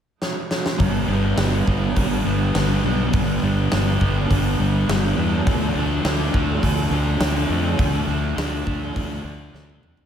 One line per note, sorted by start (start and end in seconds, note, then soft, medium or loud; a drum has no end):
0.22 snare medium
0.51 snare medium
0.66 snare medium
0.78 1.04 G1 medium
0.78 1.94 G2 medium
0.78 1.35 D3 medium
0.78 1.10 G3 loud
0.78 1.09 B3 medium
0.78 1.08 D4 loud
0.78 kick loud
0.78 open hi-hat medium
1.08 1.32 G1 medium
1.08 1.36 D3 medium
1.08 1.37 G3 medium
1.08 1.38 B3 medium
1.08 1.39 D4 medium
1.36 1.62 G1 medium
1.36 2.53 G2 medium
1.36 1.94 D3 medium
1.36 1.68 G3 medium
1.36 1.67 B3 medium
1.36 1.65 D4 medium
1.36 snare loud
1.36 open hi-hat medium
1.65 1.92 G1 medium
1.65 1.95 G3 medium
1.65 1.96 B3 medium
1.65 1.97 D4 medium
1.65 kick medium
1.94 2.20 G1 medium
1.94 2.54 G2 medium
1.94 2.53 D3 medium
1.94 2.27 G3 medium
1.94 2.26 B3 medium
1.94 2.25 D4 loud
1.94 kick medium
1.94 open hi-hat medium
2.24 2.50 G1 medium
2.24 2.54 D3 medium
2.24 2.55 G3 medium
2.24 2.55 B3 medium
2.24 2.58 D4 medium
2.28 2.54 G3 medium
2.54 2.79 G1 medium
2.54 3.12 G2 medium
2.54 3.12 D3 medium
2.54 2.85 G3 medium
2.54 2.84 B3 medium
2.54 2.83 D4 medium
2.54 snare loud
2.54 open hi-hat medium
2.83 3.08 B1 medium
2.83 3.13 D3 medium
2.83 3.13 G3 medium
2.83 3.14 B3 medium
2.83 3.15 D4 medium
3.13 3.38 G1 medium
3.13 3.71 G2 medium
3.13 3.70 D3 medium
3.13 3.44 G3 loud
3.13 3.42 B3 loud
3.13 3.41 D4 medium
3.13 kick loud
3.13 open hi-hat medium
3.42 3.67 G1 medium
3.42 3.72 D3 medium
3.42 3.71 G3 medium
3.42 3.72 B3 medium
3.42 3.74 D4 medium
3.71 3.96 G1 medium
3.71 4.86 G2 medium
3.71 4.29 D3 medium
3.71 4.02 G3 medium
3.71 4.00 B3 medium
3.71 3.99 D4 medium
3.71 snare loud
3.71 open hi-hat medium
4.00 4.25 G1 medium
4.00 4.30 G3 medium
4.00 4.30 B3 medium
4.00 4.32 D4 medium
4.00 kick medium
4.29 4.54 G1 medium
4.29 4.88 G2 medium
4.29 4.86 D3 loud
4.29 4.61 G3 medium
4.29 4.60 B3 loud
4.29 4.58 D4 loud
4.29 kick medium
4.29 open hi-hat medium
4.59 4.84 G1 medium
4.59 4.87 D3 medium
4.59 4.88 G3 medium
4.59 4.89 B3 medium
4.59 4.90 D4 medium
4.87 5.13 G1 medium
4.87 5.44 G2 medium
4.87 5.44 D3 medium
4.87 5.19 G3 medium
4.87 5.17 B3 medium
4.87 5.17 D4 medium
4.87 snare loud
4.87 open hi-hat soft
5.16 5.41 E2 medium
5.16 5.43 D3 medium
5.16 5.44 G3 medium
5.16 5.45 B3 medium
5.16 5.49 D4 medium
5.20 5.46 G3 medium
5.46 5.71 D2 medium
5.46 6.04 D3 medium
5.46 5.78 F3 loud
5.46 5.77 A3 loud
5.46 5.75 D4 loud
5.46 kick loud
5.46 open hi-hat medium
5.75 5.99 D2 medium
5.75 6.05 F3 medium
5.75 6.06 A3 medium
5.75 6.07 D4 medium
6.04 6.29 D2 medium
6.04 6.61 D3 medium
6.04 6.36 F3 medium
6.04 6.34 A3 medium
6.04 6.32 D4 medium
6.04 snare loud
6.04 open hi-hat medium
6.33 6.58 D2 medium
6.33 6.63 F3 medium
6.33 6.64 A3 medium
6.33 6.64 D4 medium
6.33 kick medium
6.62 6.87 D2 medium
6.62 7.19 D3 medium
6.62 6.94 F3 medium
6.62 6.92 A3 loud
6.62 6.90 D4 loud
6.62 kick medium
6.62 open hi-hat medium
6.90 7.15 D2 medium
6.90 7.20 F3 medium
6.90 7.21 A3 medium
6.90 7.22 D4 medium
7.19 7.45 D2 medium
7.19 7.77 D3 medium
7.19 7.51 F3 medium
7.19 7.50 A3 medium
7.19 7.48 D4 medium
7.19 snare loud
7.19 open hi-hat medium
7.48 7.74 F2 medium
7.48 7.78 F3 medium
7.48 7.79 A3 medium
7.48 7.80 D4 medium
7.78 8.03 D2 medium
7.78 8.35 D3 medium
7.78 8.09 F3 medium
7.78 8.08 A3 medium
7.78 8.05 D4 loud
7.78 kick loud
7.78 open hi-hat medium
8.07 8.32 D2 medium
8.07 8.36 F3 medium
8.07 8.37 A3 medium
8.07 8.38 D4 medium
8.36 8.61 D2 medium
8.36 8.93 D3 medium
8.36 8.68 F3 medium
8.36 8.66 A3 medium
8.36 8.64 D4 medium
8.36 snare loud
8.36 open hi-hat medium
8.66 8.91 D2 medium
8.66 8.94 F3 medium
8.66 8.95 A3 medium
8.66 8.96 D4 medium
8.66 kick medium
8.94 9.20 D2 medium
8.94 9.51 D3 medium
8.94 9.26 F3 medium
8.94 9.25 A3 loud
8.94 9.22 D4 medium
8.94 kick medium
8.94 open hi-hat medium
9.24 9.49 D2 medium
9.24 9.53 F3 medium
9.24 9.53 A3 medium
9.24 9.54 D4 medium
9.53 9.78 D2 medium
9.53 10.06 D3 medium
9.53 9.83 F3 medium
9.53 9.82 A3 medium
9.53 9.80 D4 medium
9.53 snare medium
9.70 high tom medium
9.81 10.06 F2 medium
9.81 10.06 F3 medium
9.81 10.06 A3 medium
9.81 10.06 D4 medium
9.81 mid tom medium
9.97 floor tom medium